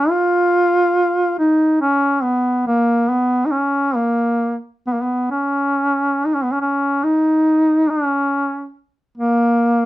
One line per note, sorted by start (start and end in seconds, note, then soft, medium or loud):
0.00 0.11 C#4 medium
0.10 1.38 F4 loud
1.39 1.79 D#4 medium
1.81 2.24 C#4 medium
2.23 2.66 B3 medium
2.67 3.11 A#3 medium
3.10 3.47 B3 medium
3.46 3.53 D#4 medium
3.51 3.97 C#4 medium
3.96 4.58 A#3 medium
4.87 4.95 B3 medium
4.93 5.03 A#3 soft
5.01 5.30 B3 medium
5.31 6.27 C#4 medium
6.25 6.36 D#4 medium
6.34 6.45 C#4 medium
6.44 6.53 B3 medium
6.52 6.61 C#4 medium
6.61 7.05 C#4 medium
7.04 7.92 D#4 medium
7.90 8.75 C#4 medium
9.18 9.86 A#3 medium